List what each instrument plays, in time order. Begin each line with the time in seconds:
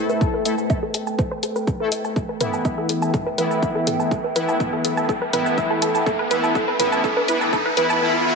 Already playing: analog polysynth A3 E4 A4, analog synth pad A3 A4 B4 C5 G5
0.09 synth arpeggio sound B4, shaker
0.21 synth arpeggio sound A4, kick, shaker
0.34 synth arpeggio sound B4
0.45 analog polysynth A3 E4 A4, synth arpeggio sound E5, closed hi-hat, shaker
0.58 synth arpeggio sound A5, shaker
0.70 synth arpeggio sound E5, kick, shaker
0.83 synth arpeggio sound A4
0.94 synth arpeggio sound A4, closed hi-hat, shaker
1.07 synth arpeggio sound A5, shaker
1.19 synth arpeggio sound C5, kick, shaker
1.31 synth arpeggio sound C5
1.43 synth arpeggio sound A4, closed hi-hat, shaker
1.56 synth arpeggio sound B4, shaker
1.67 synth arpeggio sound A4, kick, shaker
1.80 analog polysynth A3 E4 A4, synth arpeggio sound B4
1.92 synth arpeggio sound E5, closed hi-hat, shaker
2.05 synth arpeggio sound A5, shaker
2.16 synth arpeggio sound A4, analog synth pad E5 G5, kick, riser, shaker
2.29 synth arpeggio sound B4
2.41 analog polysynth E3 B3 E4, synth arpeggio sound B4, closed hi-hat, mid tom, shaker
2.53 synth arpeggio sound A5, shaker
2.65 synth arpeggio sound E5, kick, shaker
2.78 synth arpeggio sound A4
2.89 synth arpeggio sound A4, closed hi-hat, shaker
3.02 synth arpeggio sound A5, shaker
3.14 synth arpeggio sound A4, kick, mid tom, shaker
3.26 synth arpeggio sound B4
3.38 analog polysynth E3 B3 E4, synth arpeggio sound B4, closed hi-hat, shaker
3.51 synth arpeggio sound A5, shaker
3.63 synth arpeggio sound E5, kick, shaker
3.75 synth arpeggio sound A4
3.87 synth arpeggio sound A4, closed hi-hat, mid tom, shaker
4.00 synth arpeggio sound A5, shaker
4.11 synth arpeggio sound A4, kick, shaker
4.24 synth arpeggio sound B4
4.36 analog polysynth E3 B3 E4, synth arpeggio sound B4, closed hi-hat, shaker
4.48 synth arpeggio sound A5, shaker
4.60 synth arpeggio sound E5, kick, mid tom, shaker
4.73 synth arpeggio sound A4
4.85 synth arpeggio sound A4, closed hi-hat, shaker
4.97 synth arpeggio sound A5, shaker
5.09 synth arpeggio sound A4, kick, shaker
5.22 synth arpeggio sound B4
5.33 analog polysynth E3 B3 E4, synth arpeggio sound B4, closed hi-hat, mid tom, shaker
5.46 synth arpeggio sound A5, shaker
5.58 synth arpeggio sound E5, kick, shaker
5.70 synth arpeggio sound A4
5.82 synth arpeggio sound A4, closed hi-hat, shaker
5.95 synth arpeggio sound A5, shaker
6.06 synth arpeggio sound A4, kick, mid tom, shaker
6.19 synth arpeggio sound B4
6.31 analog polysynth E3 B3 E4, synth arpeggio sound B4, closed hi-hat, shaker
6.43 synth arpeggio sound A5, shaker
6.55 synth arpeggio sound A4, kick, shaker
6.68 synth arpeggio sound B4
6.80 analog polysynth E3 B3 E4, synth arpeggio sound B4, closed hi-hat, mid tom, shaker
6.92 synth arpeggio sound A5, shaker
7.04 synth arpeggio sound A4, kick, shaker
7.17 synth arpeggio sound B4
7.28 analog polysynth E3 B3 E4, synth arpeggio sound B4, closed hi-hat, shaker
7.41 synth arpeggio sound A5, shaker
7.53 synth arpeggio sound A4, kick, mid tom, shaker
7.66 synth arpeggio sound B4
7.77 analog polysynth E3 B3 E4, synth arpeggio sound B4, closed hi-hat, shaker
7.90 synth arpeggio sound A5, shaker
8.01 analog polysynth E3 B3 E4, noise sweep
8.26 analog polysynth E3 B3 E4